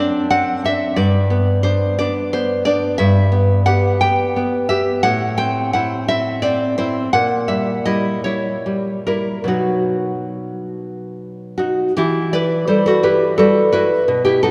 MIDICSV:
0, 0, Header, 1, 2, 480
1, 0, Start_track
1, 0, Key_signature, 1, "minor"
1, 0, Tempo, 670391
1, 688, Time_signature, 6, 3, 24, 8
1, 2620, Tempo, 693642
1, 5020, Tempo, 738007
1, 5500, Tempo, 797872
1, 5980, Tempo, 826446
1, 7900, Tempo, 704225
1, 9631, End_track
2, 0, Start_track
2, 0, Title_t, "Nylon-string guitar"
2, 0, Program_c, 0, 24
2, 0, Note_on_c, 0, 42, 54
2, 0, Note_on_c, 0, 60, 40
2, 0, Note_on_c, 0, 62, 43
2, 0, Note_on_c, 0, 74, 66
2, 208, Note_off_c, 0, 74, 0
2, 210, Note_off_c, 0, 60, 0
2, 218, Note_on_c, 0, 60, 46
2, 219, Note_on_c, 0, 78, 80
2, 443, Note_off_c, 0, 78, 0
2, 454, Note_off_c, 0, 60, 0
2, 457, Note_off_c, 0, 62, 0
2, 461, Note_on_c, 0, 60, 39
2, 468, Note_on_c, 0, 62, 43
2, 469, Note_on_c, 0, 76, 70
2, 661, Note_off_c, 0, 42, 0
2, 671, Note_off_c, 0, 60, 0
2, 672, Note_off_c, 0, 62, 0
2, 685, Note_off_c, 0, 76, 0
2, 690, Note_on_c, 0, 43, 55
2, 691, Note_on_c, 0, 74, 85
2, 933, Note_on_c, 0, 59, 49
2, 1147, Note_off_c, 0, 74, 0
2, 1160, Note_off_c, 0, 59, 0
2, 1168, Note_on_c, 0, 59, 43
2, 1168, Note_on_c, 0, 72, 74
2, 1176, Note_on_c, 0, 62, 42
2, 1401, Note_off_c, 0, 72, 0
2, 1419, Note_off_c, 0, 59, 0
2, 1422, Note_on_c, 0, 74, 76
2, 1423, Note_off_c, 0, 62, 0
2, 1428, Note_on_c, 0, 59, 44
2, 1432, Note_on_c, 0, 62, 45
2, 1651, Note_off_c, 0, 74, 0
2, 1664, Note_off_c, 0, 59, 0
2, 1669, Note_on_c, 0, 72, 75
2, 1673, Note_on_c, 0, 59, 49
2, 1895, Note_off_c, 0, 72, 0
2, 1896, Note_off_c, 0, 59, 0
2, 1898, Note_on_c, 0, 74, 79
2, 1900, Note_off_c, 0, 62, 0
2, 1905, Note_on_c, 0, 59, 45
2, 1908, Note_on_c, 0, 62, 48
2, 2108, Note_off_c, 0, 43, 0
2, 2116, Note_off_c, 0, 59, 0
2, 2118, Note_off_c, 0, 62, 0
2, 2127, Note_off_c, 0, 74, 0
2, 2134, Note_on_c, 0, 76, 87
2, 2142, Note_on_c, 0, 43, 62
2, 2376, Note_on_c, 0, 59, 50
2, 2599, Note_off_c, 0, 76, 0
2, 2613, Note_off_c, 0, 59, 0
2, 2619, Note_on_c, 0, 78, 84
2, 2621, Note_on_c, 0, 59, 45
2, 2629, Note_on_c, 0, 67, 48
2, 2852, Note_off_c, 0, 78, 0
2, 2859, Note_off_c, 0, 59, 0
2, 2861, Note_on_c, 0, 79, 81
2, 2864, Note_off_c, 0, 67, 0
2, 2867, Note_on_c, 0, 59, 42
2, 2872, Note_on_c, 0, 67, 43
2, 3099, Note_off_c, 0, 59, 0
2, 3107, Note_on_c, 0, 59, 46
2, 3323, Note_off_c, 0, 79, 0
2, 3331, Note_off_c, 0, 59, 0
2, 3331, Note_off_c, 0, 67, 0
2, 3333, Note_on_c, 0, 76, 82
2, 3339, Note_on_c, 0, 67, 46
2, 3340, Note_on_c, 0, 59, 45
2, 3551, Note_off_c, 0, 43, 0
2, 3551, Note_off_c, 0, 59, 0
2, 3551, Note_off_c, 0, 67, 0
2, 3562, Note_off_c, 0, 76, 0
2, 3569, Note_on_c, 0, 78, 89
2, 3572, Note_on_c, 0, 45, 62
2, 3800, Note_off_c, 0, 78, 0
2, 3808, Note_on_c, 0, 79, 84
2, 3812, Note_on_c, 0, 60, 48
2, 4041, Note_off_c, 0, 79, 0
2, 4053, Note_off_c, 0, 60, 0
2, 4055, Note_on_c, 0, 78, 81
2, 4062, Note_on_c, 0, 60, 44
2, 4063, Note_on_c, 0, 64, 46
2, 4285, Note_off_c, 0, 78, 0
2, 4290, Note_off_c, 0, 60, 0
2, 4293, Note_off_c, 0, 64, 0
2, 4298, Note_on_c, 0, 60, 41
2, 4298, Note_on_c, 0, 76, 81
2, 4302, Note_on_c, 0, 64, 46
2, 4526, Note_off_c, 0, 76, 0
2, 4528, Note_off_c, 0, 60, 0
2, 4531, Note_on_c, 0, 74, 79
2, 4537, Note_on_c, 0, 60, 46
2, 4763, Note_off_c, 0, 74, 0
2, 4774, Note_off_c, 0, 60, 0
2, 4777, Note_off_c, 0, 64, 0
2, 4778, Note_on_c, 0, 72, 70
2, 4782, Note_on_c, 0, 60, 40
2, 4785, Note_on_c, 0, 64, 48
2, 4988, Note_off_c, 0, 45, 0
2, 4998, Note_off_c, 0, 60, 0
2, 5000, Note_off_c, 0, 64, 0
2, 5010, Note_off_c, 0, 72, 0
2, 5022, Note_on_c, 0, 78, 91
2, 5027, Note_on_c, 0, 46, 60
2, 5246, Note_off_c, 0, 78, 0
2, 5250, Note_on_c, 0, 76, 67
2, 5256, Note_on_c, 0, 55, 45
2, 5486, Note_off_c, 0, 76, 0
2, 5490, Note_off_c, 0, 55, 0
2, 5493, Note_on_c, 0, 75, 73
2, 5497, Note_on_c, 0, 64, 41
2, 5500, Note_on_c, 0, 55, 41
2, 5722, Note_off_c, 0, 75, 0
2, 5725, Note_off_c, 0, 55, 0
2, 5726, Note_on_c, 0, 73, 62
2, 5728, Note_off_c, 0, 64, 0
2, 5732, Note_on_c, 0, 55, 35
2, 5735, Note_on_c, 0, 64, 39
2, 5970, Note_off_c, 0, 55, 0
2, 5977, Note_on_c, 0, 55, 41
2, 6197, Note_off_c, 0, 73, 0
2, 6210, Note_off_c, 0, 55, 0
2, 6214, Note_off_c, 0, 64, 0
2, 6214, Note_on_c, 0, 70, 58
2, 6217, Note_on_c, 0, 55, 36
2, 6221, Note_on_c, 0, 64, 37
2, 6428, Note_off_c, 0, 46, 0
2, 6430, Note_on_c, 0, 47, 48
2, 6437, Note_off_c, 0, 55, 0
2, 6439, Note_off_c, 0, 64, 0
2, 6439, Note_on_c, 0, 54, 35
2, 6449, Note_off_c, 0, 70, 0
2, 6452, Note_on_c, 0, 63, 36
2, 6454, Note_on_c, 0, 66, 65
2, 7646, Note_off_c, 0, 66, 0
2, 7672, Note_on_c, 0, 66, 60
2, 7674, Note_off_c, 0, 63, 0
2, 7681, Note_on_c, 0, 63, 42
2, 7859, Note_off_c, 0, 47, 0
2, 7864, Note_off_c, 0, 54, 0
2, 7887, Note_off_c, 0, 63, 0
2, 7889, Note_off_c, 0, 66, 0
2, 7898, Note_on_c, 0, 67, 77
2, 7904, Note_on_c, 0, 52, 55
2, 7908, Note_on_c, 0, 64, 59
2, 8132, Note_off_c, 0, 64, 0
2, 8135, Note_off_c, 0, 67, 0
2, 8146, Note_on_c, 0, 74, 78
2, 8150, Note_on_c, 0, 64, 49
2, 8157, Note_on_c, 0, 71, 59
2, 8378, Note_off_c, 0, 71, 0
2, 8379, Note_off_c, 0, 74, 0
2, 8381, Note_on_c, 0, 72, 65
2, 8386, Note_on_c, 0, 55, 41
2, 8393, Note_on_c, 0, 69, 47
2, 8498, Note_off_c, 0, 69, 0
2, 8505, Note_off_c, 0, 72, 0
2, 8507, Note_on_c, 0, 69, 67
2, 8518, Note_on_c, 0, 66, 52
2, 8620, Note_off_c, 0, 64, 0
2, 8625, Note_off_c, 0, 66, 0
2, 8625, Note_on_c, 0, 71, 68
2, 8626, Note_off_c, 0, 69, 0
2, 8629, Note_on_c, 0, 67, 56
2, 8631, Note_on_c, 0, 64, 41
2, 8849, Note_off_c, 0, 67, 0
2, 8855, Note_off_c, 0, 71, 0
2, 8859, Note_off_c, 0, 55, 0
2, 8860, Note_on_c, 0, 69, 82
2, 8867, Note_on_c, 0, 55, 45
2, 8870, Note_on_c, 0, 66, 59
2, 9088, Note_off_c, 0, 66, 0
2, 9090, Note_off_c, 0, 69, 0
2, 9094, Note_off_c, 0, 64, 0
2, 9097, Note_on_c, 0, 71, 75
2, 9102, Note_on_c, 0, 66, 56
2, 9103, Note_on_c, 0, 64, 40
2, 9316, Note_off_c, 0, 52, 0
2, 9336, Note_off_c, 0, 55, 0
2, 9339, Note_on_c, 0, 47, 58
2, 9341, Note_off_c, 0, 64, 0
2, 9436, Note_off_c, 0, 66, 0
2, 9443, Note_off_c, 0, 71, 0
2, 9452, Note_on_c, 0, 67, 73
2, 9461, Note_on_c, 0, 64, 55
2, 9571, Note_off_c, 0, 64, 0
2, 9575, Note_off_c, 0, 67, 0
2, 9576, Note_on_c, 0, 69, 75
2, 9584, Note_on_c, 0, 63, 46
2, 9587, Note_on_c, 0, 66, 64
2, 9631, Note_off_c, 0, 47, 0
2, 9631, Note_off_c, 0, 63, 0
2, 9631, Note_off_c, 0, 66, 0
2, 9631, Note_off_c, 0, 69, 0
2, 9631, End_track
0, 0, End_of_file